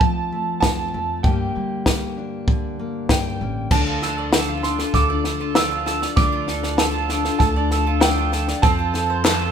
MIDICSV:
0, 0, Header, 1, 7, 480
1, 0, Start_track
1, 0, Key_signature, -1, "minor"
1, 0, Tempo, 616016
1, 970, Time_signature, 4, 2, 24, 8
1, 7416, End_track
2, 0, Start_track
2, 0, Title_t, "Upright piano"
2, 0, Program_c, 0, 0
2, 0, Note_on_c, 0, 81, 90
2, 450, Note_off_c, 0, 81, 0
2, 471, Note_on_c, 0, 81, 90
2, 960, Note_on_c, 0, 79, 75
2, 975, Note_off_c, 0, 81, 0
2, 2375, Note_off_c, 0, 79, 0
2, 2415, Note_on_c, 0, 79, 72
2, 2862, Note_off_c, 0, 79, 0
2, 2893, Note_on_c, 0, 81, 72
2, 3609, Note_on_c, 0, 84, 69
2, 3633, Note_off_c, 0, 81, 0
2, 3852, Note_on_c, 0, 86, 88
2, 3857, Note_off_c, 0, 84, 0
2, 4331, Note_on_c, 0, 88, 85
2, 4346, Note_off_c, 0, 86, 0
2, 4803, Note_on_c, 0, 86, 91
2, 4825, Note_off_c, 0, 88, 0
2, 5279, Note_on_c, 0, 81, 68
2, 5301, Note_off_c, 0, 86, 0
2, 5733, Note_off_c, 0, 81, 0
2, 5756, Note_on_c, 0, 81, 81
2, 6237, Note_on_c, 0, 79, 89
2, 6257, Note_off_c, 0, 81, 0
2, 6719, Note_on_c, 0, 81, 99
2, 6738, Note_off_c, 0, 79, 0
2, 7416, Note_off_c, 0, 81, 0
2, 7416, End_track
3, 0, Start_track
3, 0, Title_t, "Mandolin"
3, 0, Program_c, 1, 25
3, 2891, Note_on_c, 1, 62, 82
3, 3014, Note_on_c, 1, 65, 63
3, 3136, Note_on_c, 1, 69, 69
3, 3253, Note_off_c, 1, 69, 0
3, 3256, Note_on_c, 1, 74, 66
3, 3371, Note_off_c, 1, 62, 0
3, 3371, Note_off_c, 1, 74, 0
3, 3374, Note_on_c, 1, 69, 70
3, 3485, Note_off_c, 1, 65, 0
3, 3494, Note_on_c, 1, 65, 64
3, 3612, Note_on_c, 1, 62, 59
3, 3725, Note_off_c, 1, 65, 0
3, 3734, Note_on_c, 1, 65, 58
3, 3842, Note_off_c, 1, 69, 0
3, 3851, Note_on_c, 1, 69, 81
3, 3969, Note_off_c, 1, 69, 0
3, 3972, Note_on_c, 1, 74, 70
3, 4089, Note_off_c, 1, 74, 0
3, 4091, Note_off_c, 1, 62, 0
3, 4092, Note_on_c, 1, 69, 66
3, 4203, Note_off_c, 1, 65, 0
3, 4213, Note_on_c, 1, 65, 61
3, 4331, Note_on_c, 1, 62, 64
3, 4441, Note_off_c, 1, 65, 0
3, 4450, Note_on_c, 1, 65, 66
3, 4558, Note_off_c, 1, 69, 0
3, 4567, Note_on_c, 1, 69, 72
3, 4687, Note_off_c, 1, 69, 0
3, 4690, Note_on_c, 1, 74, 61
3, 4800, Note_off_c, 1, 62, 0
3, 4809, Note_on_c, 1, 62, 76
3, 4917, Note_off_c, 1, 65, 0
3, 4927, Note_on_c, 1, 65, 70
3, 5044, Note_off_c, 1, 65, 0
3, 5047, Note_on_c, 1, 69, 62
3, 5158, Note_off_c, 1, 74, 0
3, 5168, Note_on_c, 1, 74, 63
3, 5280, Note_off_c, 1, 69, 0
3, 5287, Note_off_c, 1, 74, 0
3, 5290, Note_off_c, 1, 62, 0
3, 5290, Note_on_c, 1, 69, 74
3, 5404, Note_on_c, 1, 65, 64
3, 5530, Note_on_c, 1, 62, 66
3, 5638, Note_off_c, 1, 65, 0
3, 5647, Note_on_c, 1, 65, 61
3, 5760, Note_off_c, 1, 69, 0
3, 5770, Note_on_c, 1, 69, 79
3, 5890, Note_off_c, 1, 69, 0
3, 5893, Note_on_c, 1, 74, 77
3, 6010, Note_off_c, 1, 62, 0
3, 6012, Note_off_c, 1, 74, 0
3, 6015, Note_on_c, 1, 69, 69
3, 6122, Note_off_c, 1, 65, 0
3, 6131, Note_on_c, 1, 65, 71
3, 6255, Note_on_c, 1, 62, 65
3, 6364, Note_off_c, 1, 65, 0
3, 6373, Note_on_c, 1, 65, 71
3, 6481, Note_off_c, 1, 69, 0
3, 6491, Note_on_c, 1, 69, 72
3, 6608, Note_off_c, 1, 69, 0
3, 6611, Note_on_c, 1, 74, 64
3, 6725, Note_off_c, 1, 62, 0
3, 6728, Note_on_c, 1, 60, 91
3, 6730, Note_off_c, 1, 74, 0
3, 6731, Note_off_c, 1, 65, 0
3, 6847, Note_on_c, 1, 65, 66
3, 6965, Note_on_c, 1, 69, 64
3, 7086, Note_off_c, 1, 69, 0
3, 7089, Note_on_c, 1, 72, 74
3, 7204, Note_off_c, 1, 72, 0
3, 7207, Note_on_c, 1, 69, 82
3, 7209, Note_off_c, 1, 60, 0
3, 7322, Note_off_c, 1, 65, 0
3, 7332, Note_on_c, 1, 65, 67
3, 7416, Note_off_c, 1, 65, 0
3, 7416, Note_off_c, 1, 69, 0
3, 7416, End_track
4, 0, Start_track
4, 0, Title_t, "Twelve-string acoustic guitar"
4, 0, Program_c, 2, 25
4, 2888, Note_on_c, 2, 50, 73
4, 2892, Note_on_c, 2, 53, 72
4, 2895, Note_on_c, 2, 62, 78
4, 2896, Note_on_c, 2, 65, 68
4, 2897, Note_on_c, 2, 69, 80
4, 3118, Note_off_c, 2, 53, 0
4, 3125, Note_off_c, 2, 62, 0
4, 3127, Note_on_c, 2, 53, 58
4, 3128, Note_off_c, 2, 65, 0
4, 3129, Note_off_c, 2, 50, 0
4, 3134, Note_off_c, 2, 69, 0
4, 3134, Note_on_c, 2, 62, 60
4, 3138, Note_on_c, 2, 65, 58
4, 3143, Note_on_c, 2, 69, 57
4, 3361, Note_off_c, 2, 53, 0
4, 3362, Note_off_c, 2, 62, 0
4, 3364, Note_off_c, 2, 65, 0
4, 3367, Note_off_c, 2, 69, 0
4, 3368, Note_on_c, 2, 50, 68
4, 3371, Note_on_c, 2, 53, 77
4, 3371, Note_on_c, 2, 62, 76
4, 3373, Note_on_c, 2, 65, 78
4, 3376, Note_on_c, 2, 69, 84
4, 3595, Note_off_c, 2, 53, 0
4, 3602, Note_off_c, 2, 62, 0
4, 3605, Note_on_c, 2, 53, 51
4, 3606, Note_off_c, 2, 65, 0
4, 3609, Note_off_c, 2, 50, 0
4, 3610, Note_off_c, 2, 69, 0
4, 3612, Note_on_c, 2, 62, 49
4, 3615, Note_on_c, 2, 65, 53
4, 3619, Note_on_c, 2, 69, 61
4, 3718, Note_off_c, 2, 69, 0
4, 3727, Note_off_c, 2, 65, 0
4, 3727, Note_on_c, 2, 69, 47
4, 3728, Note_off_c, 2, 53, 0
4, 3731, Note_off_c, 2, 62, 0
4, 3737, Note_on_c, 2, 65, 41
4, 3744, Note_on_c, 2, 62, 39
4, 3955, Note_off_c, 2, 69, 0
4, 3962, Note_off_c, 2, 65, 0
4, 3964, Note_on_c, 2, 69, 48
4, 3970, Note_off_c, 2, 62, 0
4, 3972, Note_on_c, 2, 65, 38
4, 3979, Note_on_c, 2, 62, 39
4, 4084, Note_off_c, 2, 62, 0
4, 4087, Note_off_c, 2, 69, 0
4, 4088, Note_off_c, 2, 65, 0
4, 4089, Note_on_c, 2, 53, 53
4, 4093, Note_on_c, 2, 62, 53
4, 4097, Note_on_c, 2, 65, 52
4, 4100, Note_on_c, 2, 69, 56
4, 4197, Note_off_c, 2, 69, 0
4, 4205, Note_off_c, 2, 65, 0
4, 4206, Note_on_c, 2, 69, 49
4, 4210, Note_off_c, 2, 53, 0
4, 4212, Note_off_c, 2, 62, 0
4, 4214, Note_on_c, 2, 65, 38
4, 4221, Note_on_c, 2, 62, 38
4, 4324, Note_off_c, 2, 62, 0
4, 4325, Note_off_c, 2, 65, 0
4, 4326, Note_on_c, 2, 50, 66
4, 4327, Note_off_c, 2, 69, 0
4, 4329, Note_on_c, 2, 53, 70
4, 4333, Note_on_c, 2, 62, 67
4, 4334, Note_on_c, 2, 65, 73
4, 4336, Note_on_c, 2, 69, 81
4, 4557, Note_off_c, 2, 53, 0
4, 4563, Note_off_c, 2, 62, 0
4, 4567, Note_on_c, 2, 53, 51
4, 4568, Note_off_c, 2, 50, 0
4, 4569, Note_off_c, 2, 65, 0
4, 4572, Note_on_c, 2, 62, 59
4, 4573, Note_off_c, 2, 69, 0
4, 4578, Note_on_c, 2, 65, 62
4, 4581, Note_on_c, 2, 69, 61
4, 4804, Note_off_c, 2, 53, 0
4, 4805, Note_off_c, 2, 62, 0
4, 4808, Note_off_c, 2, 65, 0
4, 4809, Note_off_c, 2, 69, 0
4, 4810, Note_on_c, 2, 50, 72
4, 4814, Note_on_c, 2, 53, 70
4, 4815, Note_on_c, 2, 62, 81
4, 4818, Note_on_c, 2, 65, 78
4, 4818, Note_on_c, 2, 69, 77
4, 5037, Note_off_c, 2, 53, 0
4, 5042, Note_off_c, 2, 62, 0
4, 5045, Note_off_c, 2, 65, 0
4, 5046, Note_on_c, 2, 53, 52
4, 5048, Note_off_c, 2, 69, 0
4, 5050, Note_off_c, 2, 50, 0
4, 5052, Note_on_c, 2, 62, 53
4, 5055, Note_on_c, 2, 65, 65
4, 5057, Note_on_c, 2, 69, 56
4, 5281, Note_off_c, 2, 53, 0
4, 5284, Note_off_c, 2, 62, 0
4, 5286, Note_off_c, 2, 65, 0
4, 5287, Note_on_c, 2, 50, 69
4, 5288, Note_off_c, 2, 69, 0
4, 5290, Note_on_c, 2, 53, 70
4, 5294, Note_on_c, 2, 62, 78
4, 5295, Note_on_c, 2, 65, 81
4, 5297, Note_on_c, 2, 69, 83
4, 5514, Note_off_c, 2, 53, 0
4, 5519, Note_off_c, 2, 62, 0
4, 5524, Note_on_c, 2, 53, 55
4, 5527, Note_off_c, 2, 65, 0
4, 5528, Note_off_c, 2, 50, 0
4, 5528, Note_on_c, 2, 62, 61
4, 5529, Note_off_c, 2, 69, 0
4, 5536, Note_on_c, 2, 65, 66
4, 5539, Note_on_c, 2, 69, 65
4, 5634, Note_off_c, 2, 69, 0
4, 5642, Note_off_c, 2, 65, 0
4, 5643, Note_on_c, 2, 69, 47
4, 5647, Note_off_c, 2, 53, 0
4, 5649, Note_off_c, 2, 62, 0
4, 5651, Note_on_c, 2, 65, 48
4, 5657, Note_on_c, 2, 62, 43
4, 5875, Note_off_c, 2, 69, 0
4, 5885, Note_off_c, 2, 65, 0
4, 5885, Note_on_c, 2, 69, 45
4, 5889, Note_off_c, 2, 62, 0
4, 5894, Note_on_c, 2, 65, 47
4, 5899, Note_on_c, 2, 62, 41
4, 6003, Note_off_c, 2, 62, 0
4, 6006, Note_off_c, 2, 65, 0
4, 6007, Note_off_c, 2, 69, 0
4, 6007, Note_on_c, 2, 53, 53
4, 6012, Note_on_c, 2, 62, 60
4, 6016, Note_on_c, 2, 65, 63
4, 6020, Note_on_c, 2, 69, 59
4, 6115, Note_off_c, 2, 69, 0
4, 6125, Note_off_c, 2, 65, 0
4, 6125, Note_on_c, 2, 69, 43
4, 6128, Note_off_c, 2, 53, 0
4, 6131, Note_off_c, 2, 62, 0
4, 6134, Note_on_c, 2, 65, 44
4, 6140, Note_on_c, 2, 62, 39
4, 6242, Note_off_c, 2, 62, 0
4, 6243, Note_off_c, 2, 65, 0
4, 6244, Note_on_c, 2, 50, 76
4, 6246, Note_off_c, 2, 69, 0
4, 6247, Note_on_c, 2, 53, 77
4, 6251, Note_on_c, 2, 62, 75
4, 6252, Note_on_c, 2, 65, 74
4, 6255, Note_on_c, 2, 69, 68
4, 6472, Note_off_c, 2, 53, 0
4, 6477, Note_off_c, 2, 62, 0
4, 6481, Note_off_c, 2, 65, 0
4, 6481, Note_on_c, 2, 53, 57
4, 6487, Note_off_c, 2, 50, 0
4, 6487, Note_on_c, 2, 62, 59
4, 6488, Note_off_c, 2, 69, 0
4, 6490, Note_on_c, 2, 65, 58
4, 6497, Note_on_c, 2, 69, 68
4, 6717, Note_off_c, 2, 53, 0
4, 6723, Note_off_c, 2, 65, 0
4, 6725, Note_off_c, 2, 62, 0
4, 6726, Note_off_c, 2, 69, 0
4, 6727, Note_on_c, 2, 53, 72
4, 6728, Note_on_c, 2, 60, 73
4, 6732, Note_on_c, 2, 65, 84
4, 6735, Note_on_c, 2, 69, 81
4, 6954, Note_off_c, 2, 53, 0
4, 6961, Note_off_c, 2, 60, 0
4, 6964, Note_on_c, 2, 53, 64
4, 6966, Note_off_c, 2, 65, 0
4, 6970, Note_off_c, 2, 69, 0
4, 6970, Note_on_c, 2, 60, 62
4, 6975, Note_on_c, 2, 65, 68
4, 6979, Note_on_c, 2, 69, 64
4, 7198, Note_off_c, 2, 53, 0
4, 7201, Note_off_c, 2, 60, 0
4, 7205, Note_off_c, 2, 65, 0
4, 7208, Note_off_c, 2, 69, 0
4, 7208, Note_on_c, 2, 53, 80
4, 7211, Note_on_c, 2, 60, 76
4, 7214, Note_on_c, 2, 65, 80
4, 7218, Note_on_c, 2, 69, 85
4, 7416, Note_off_c, 2, 53, 0
4, 7416, Note_off_c, 2, 60, 0
4, 7416, Note_off_c, 2, 65, 0
4, 7416, Note_off_c, 2, 69, 0
4, 7416, End_track
5, 0, Start_track
5, 0, Title_t, "Steel-string acoustic guitar"
5, 0, Program_c, 3, 25
5, 0, Note_on_c, 3, 41, 66
5, 0, Note_on_c, 3, 57, 50
5, 0, Note_on_c, 3, 60, 47
5, 0, Note_on_c, 3, 65, 60
5, 7, Note_on_c, 3, 53, 56
5, 242, Note_off_c, 3, 57, 0
5, 252, Note_on_c, 3, 57, 55
5, 478, Note_off_c, 3, 60, 0
5, 487, Note_on_c, 3, 60, 56
5, 723, Note_off_c, 3, 57, 0
5, 732, Note_on_c, 3, 57, 47
5, 940, Note_off_c, 3, 41, 0
5, 940, Note_off_c, 3, 53, 0
5, 940, Note_off_c, 3, 60, 0
5, 942, Note_off_c, 3, 57, 0
5, 952, Note_off_c, 3, 65, 0
5, 970, Note_on_c, 3, 43, 66
5, 975, Note_on_c, 3, 50, 55
5, 981, Note_on_c, 3, 58, 59
5, 985, Note_on_c, 3, 62, 52
5, 994, Note_on_c, 3, 67, 60
5, 1200, Note_off_c, 3, 50, 0
5, 1209, Note_on_c, 3, 50, 55
5, 1445, Note_off_c, 3, 58, 0
5, 1455, Note_on_c, 3, 58, 48
5, 1683, Note_off_c, 3, 62, 0
5, 1693, Note_on_c, 3, 62, 49
5, 1923, Note_off_c, 3, 50, 0
5, 1932, Note_on_c, 3, 50, 56
5, 2168, Note_off_c, 3, 58, 0
5, 2177, Note_on_c, 3, 58, 47
5, 2410, Note_off_c, 3, 62, 0
5, 2419, Note_on_c, 3, 62, 55
5, 2654, Note_off_c, 3, 58, 0
5, 2664, Note_on_c, 3, 58, 53
5, 2862, Note_off_c, 3, 43, 0
5, 2866, Note_off_c, 3, 62, 0
5, 2869, Note_off_c, 3, 58, 0
5, 2874, Note_off_c, 3, 67, 0
5, 4811, Note_off_c, 3, 50, 0
5, 7416, End_track
6, 0, Start_track
6, 0, Title_t, "Upright bass"
6, 0, Program_c, 4, 32
6, 0, Note_on_c, 4, 53, 74
6, 153, Note_off_c, 4, 53, 0
6, 487, Note_on_c, 4, 41, 74
6, 704, Note_off_c, 4, 41, 0
6, 735, Note_on_c, 4, 41, 80
6, 948, Note_off_c, 4, 41, 0
6, 969, Note_on_c, 4, 43, 87
6, 1185, Note_off_c, 4, 43, 0
6, 1217, Note_on_c, 4, 55, 64
6, 2076, Note_off_c, 4, 55, 0
6, 2412, Note_on_c, 4, 43, 74
6, 2627, Note_off_c, 4, 43, 0
6, 2657, Note_on_c, 4, 33, 77
6, 2870, Note_off_c, 4, 33, 0
6, 2892, Note_on_c, 4, 38, 82
6, 3753, Note_off_c, 4, 38, 0
6, 3849, Note_on_c, 4, 38, 79
6, 4711, Note_off_c, 4, 38, 0
6, 4809, Note_on_c, 4, 38, 85
6, 5671, Note_off_c, 4, 38, 0
6, 5767, Note_on_c, 4, 38, 91
6, 6630, Note_off_c, 4, 38, 0
6, 6728, Note_on_c, 4, 41, 86
6, 7416, Note_off_c, 4, 41, 0
6, 7416, End_track
7, 0, Start_track
7, 0, Title_t, "Drums"
7, 6, Note_on_c, 9, 36, 94
7, 84, Note_off_c, 9, 36, 0
7, 487, Note_on_c, 9, 36, 76
7, 487, Note_on_c, 9, 38, 99
7, 565, Note_off_c, 9, 36, 0
7, 565, Note_off_c, 9, 38, 0
7, 967, Note_on_c, 9, 36, 102
7, 1045, Note_off_c, 9, 36, 0
7, 1449, Note_on_c, 9, 36, 67
7, 1449, Note_on_c, 9, 38, 91
7, 1527, Note_off_c, 9, 36, 0
7, 1527, Note_off_c, 9, 38, 0
7, 1930, Note_on_c, 9, 36, 87
7, 2008, Note_off_c, 9, 36, 0
7, 2410, Note_on_c, 9, 36, 72
7, 2410, Note_on_c, 9, 38, 96
7, 2488, Note_off_c, 9, 36, 0
7, 2488, Note_off_c, 9, 38, 0
7, 2891, Note_on_c, 9, 36, 97
7, 2891, Note_on_c, 9, 38, 36
7, 2891, Note_on_c, 9, 49, 91
7, 2969, Note_off_c, 9, 36, 0
7, 2969, Note_off_c, 9, 38, 0
7, 2969, Note_off_c, 9, 49, 0
7, 3134, Note_on_c, 9, 38, 31
7, 3212, Note_off_c, 9, 38, 0
7, 3371, Note_on_c, 9, 38, 100
7, 3448, Note_off_c, 9, 38, 0
7, 3611, Note_on_c, 9, 38, 28
7, 3689, Note_off_c, 9, 38, 0
7, 3731, Note_on_c, 9, 38, 30
7, 3809, Note_off_c, 9, 38, 0
7, 3848, Note_on_c, 9, 36, 68
7, 3848, Note_on_c, 9, 38, 27
7, 3926, Note_off_c, 9, 36, 0
7, 3926, Note_off_c, 9, 38, 0
7, 4086, Note_on_c, 9, 38, 29
7, 4164, Note_off_c, 9, 38, 0
7, 4326, Note_on_c, 9, 38, 98
7, 4404, Note_off_c, 9, 38, 0
7, 4570, Note_on_c, 9, 38, 31
7, 4648, Note_off_c, 9, 38, 0
7, 4692, Note_on_c, 9, 38, 29
7, 4770, Note_off_c, 9, 38, 0
7, 4808, Note_on_c, 9, 36, 109
7, 4809, Note_on_c, 9, 38, 36
7, 4886, Note_off_c, 9, 36, 0
7, 4887, Note_off_c, 9, 38, 0
7, 5047, Note_on_c, 9, 38, 35
7, 5125, Note_off_c, 9, 38, 0
7, 5169, Note_on_c, 9, 38, 31
7, 5247, Note_off_c, 9, 38, 0
7, 5284, Note_on_c, 9, 38, 87
7, 5362, Note_off_c, 9, 38, 0
7, 5526, Note_on_c, 9, 38, 30
7, 5604, Note_off_c, 9, 38, 0
7, 5647, Note_on_c, 9, 38, 26
7, 5725, Note_off_c, 9, 38, 0
7, 5766, Note_on_c, 9, 36, 77
7, 5767, Note_on_c, 9, 38, 30
7, 5844, Note_off_c, 9, 36, 0
7, 5845, Note_off_c, 9, 38, 0
7, 6007, Note_on_c, 9, 38, 31
7, 6085, Note_off_c, 9, 38, 0
7, 6244, Note_on_c, 9, 38, 104
7, 6321, Note_off_c, 9, 38, 0
7, 6486, Note_on_c, 9, 38, 33
7, 6564, Note_off_c, 9, 38, 0
7, 6607, Note_on_c, 9, 38, 34
7, 6685, Note_off_c, 9, 38, 0
7, 6726, Note_on_c, 9, 36, 108
7, 6726, Note_on_c, 9, 38, 35
7, 6804, Note_off_c, 9, 36, 0
7, 6804, Note_off_c, 9, 38, 0
7, 6968, Note_on_c, 9, 38, 34
7, 7046, Note_off_c, 9, 38, 0
7, 7205, Note_on_c, 9, 38, 99
7, 7208, Note_on_c, 9, 39, 86
7, 7283, Note_off_c, 9, 38, 0
7, 7286, Note_off_c, 9, 39, 0
7, 7416, End_track
0, 0, End_of_file